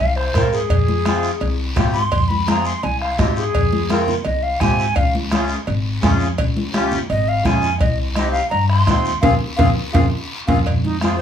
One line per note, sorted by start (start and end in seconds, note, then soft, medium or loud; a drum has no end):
0.00 0.28 C2 medium
0.00 0.18 F5 medium
0.16 0.51 C5 medium
0.16 bombo rim medium
0.34 0.63 G#2 medium
0.34 0.59 C4 medium
0.34 0.59 F4 medium
0.34 0.59 A#4 medium
0.34 bombo low medium
0.34 bombo rim medium
0.34 cowbell medium
0.34 high conga medium
0.34 short guiro medium
0.52 1.56 G#4 medium
0.52 short guiro medium
0.70 1.27 F2 medium
0.70 bombo low medium
0.70 cowbell loud
0.70 long guiro medium
0.88 high conga medium
1.05 1.31 C4 medium
1.05 1.31 F4 medium
1.05 1.31 G#4 medium
1.05 bombo rim medium
1.05 cowbell medium
1.05 high conga medium
1.05 short guiro medium
1.23 short guiro medium
1.40 1.70 C2 medium
1.40 cowbell medium
1.40 long guiro medium
1.76 2.05 G#2 medium
1.76 2.02 C4 medium
1.76 2.02 F4 medium
1.76 2.02 G4 medium
1.76 bombo low medium
1.76 bombo rim medium
1.76 cowbell medium
1.76 high conga medium
1.76 low conga medium
1.76 low timbale medium
1.76 short guiro medium
1.93 2.30 C6 medium
1.93 short guiro medium
2.11 2.69 F2 medium
2.11 bombo low medium
2.11 cowbell loud
2.11 long guiro medium
2.29 2.50 B5 medium
2.29 high conga medium
2.47 2.73 C4 medium
2.47 2.73 F4 medium
2.47 2.73 G#4 medium
2.47 2.67 A#5 medium
2.47 bombo rim medium
2.47 cowbell medium
2.47 high conga medium
2.47 short guiro medium
2.65 2.85 C6 medium
2.65 short guiro medium
2.83 3.12 C2 medium
2.83 3.00 G#5 medium
2.83 cowbell medium
2.83 long guiro medium
3.00 3.20 F5 medium
3.00 bombo rim medium
3.18 3.47 G#2 medium
3.18 3.44 C4 medium
3.18 3.44 F4 medium
3.18 3.44 G4 medium
3.18 3.36 D#5 medium
3.18 bombo low medium
3.18 bombo rim medium
3.18 cowbell medium
3.18 high conga medium
3.18 low timbale medium
3.18 short guiro medium
3.36 4.06 G#4 loud
3.36 short guiro medium
3.54 4.12 F2 medium
3.54 bombo low medium
3.54 cowbell loud
3.54 long guiro medium
3.73 high conga medium
3.89 4.15 C4 medium
3.89 4.15 F4 medium
3.89 4.15 A#4 medium
3.89 bombo rim medium
3.89 cowbell medium
3.89 high conga medium
3.89 short guiro medium
4.08 low conga medium
4.08 short guiro medium
4.25 4.54 C2 medium
4.25 4.44 D#5 medium
4.25 cowbell medium
4.25 long guiro medium
4.43 4.62 F5 medium
4.60 4.89 G#2 medium
4.60 4.86 C4 medium
4.60 4.86 F4 medium
4.60 4.86 G4 medium
4.60 4.97 G#5 medium
4.60 bombo low medium
4.60 bombo rim medium
4.60 cowbell medium
4.60 high conga medium
4.60 low conga medium
4.60 short guiro medium
4.79 short guiro medium
4.95 5.53 C#2 medium
4.95 5.13 F5 loud
4.95 bombo low medium
4.95 cowbell loud
4.95 long guiro medium
5.15 high conga medium
5.31 5.57 C#4 medium
5.31 5.57 F4 medium
5.31 5.57 G#4 medium
5.31 bombo rim medium
5.31 cowbell medium
5.31 high conga medium
5.31 short guiro medium
5.48 short guiro medium
5.66 5.96 G#1 medium
5.66 cowbell medium
5.66 long guiro medium
6.02 6.32 F2 medium
6.02 6.27 C#4 medium
6.02 6.28 F4 medium
6.02 6.28 G#4 loud
6.02 bombo low medium
6.02 bombo rim medium
6.02 cowbell medium
6.02 high conga medium
6.02 low timbale medium
6.02 short guiro medium
6.20 short guiro medium
6.38 6.96 C#2 medium
6.38 bombo low medium
6.38 cowbell loud
6.38 long guiro medium
6.57 high conga medium
6.73 6.99 C#4 medium
6.73 6.99 F4 medium
6.73 6.99 G4 loud
6.73 bombo rim medium
6.73 cowbell medium
6.73 high conga medium
6.73 short guiro medium
6.91 low conga medium
6.91 short guiro medium
7.10 7.38 G#1 medium
7.10 7.30 D#5 loud
7.10 cowbell medium
7.10 long guiro medium
7.28 7.47 F5 loud
7.44 7.74 F2 medium
7.44 7.70 C#4 medium
7.44 7.70 F4 medium
7.44 7.70 G#4 medium
7.44 7.79 G#5 medium
7.44 bombo low medium
7.44 bombo rim medium
7.44 cowbell medium
7.44 high conga medium
7.44 low conga medium
7.44 short guiro medium
7.62 short guiro medium
7.79 8.38 C2 medium
7.79 7.98 D#5 loud
7.79 bombo low medium
7.79 cowbell loud
7.79 long guiro medium
8.15 8.41 C4 medium
8.15 8.42 D#4 medium
8.15 8.42 G4 medium
8.15 8.31 D#5 medium
8.15 bombo rim medium
8.15 cowbell medium
8.15 high conga medium
8.15 short guiro medium
8.32 8.49 F5 loud
8.32 short guiro medium
8.50 8.80 G2 medium
8.50 8.68 A#5 medium
8.50 cowbell medium
8.50 long guiro medium
8.68 9.21 C6 loud
8.68 bombo rim medium
8.87 9.16 D#2 medium
8.87 9.13 C4 medium
8.87 9.13 D#4 medium
8.87 9.13 F4 medium
8.87 bombo low medium
8.87 bombo rim medium
8.87 cowbell medium
8.87 high conga medium
8.87 short guiro medium
9.05 short guiro medium
9.21 9.37 F2 medium
9.21 9.34 C4 loud
9.21 9.34 F4 loud
9.21 9.35 G#4 loud
9.21 9.34 F5 medium
9.21 bombo low loud
9.21 low conga loud
9.21 high timbale loud
9.21 long guiro loud
9.57 9.72 F2 loud
9.57 9.70 C4 medium
9.57 9.70 F4 loud
9.57 9.70 G#4 loud
9.57 9.69 F5 loud
9.57 bombo low loud
9.57 low conga loud
9.57 high timbale loud
9.57 long guiro loud
9.93 10.08 F2 medium
9.93 10.05 C4 loud
9.93 10.05 F4 loud
9.93 10.05 G#4 medium
9.93 10.05 F5 loud
9.93 bombo low loud
9.93 low conga loud
9.93 high timbale loud
9.93 long guiro loud
10.47 10.62 F2 loud
10.47 10.59 C4 medium
10.47 10.59 F4 medium
10.47 10.59 G#4 medium
10.47 10.59 F5 loud
10.47 bombo low medium
10.47 low conga medium
10.47 high timbale loud
10.47 long guiro loud
10.66 11.22 F2 medium
10.66 bombo low medium
10.66 cowbell loud
10.66 long guiro medium
10.83 11.00 D#4 medium
10.83 high conga medium
11.00 11.22 C4 medium
11.00 11.17 F4 medium
11.00 11.22 F4 medium
11.00 11.22 G#4 medium
11.00 bombo rim medium
11.00 cowbell medium
11.00 high conga medium
11.00 short guiro medium
11.18 11.22 C5 medium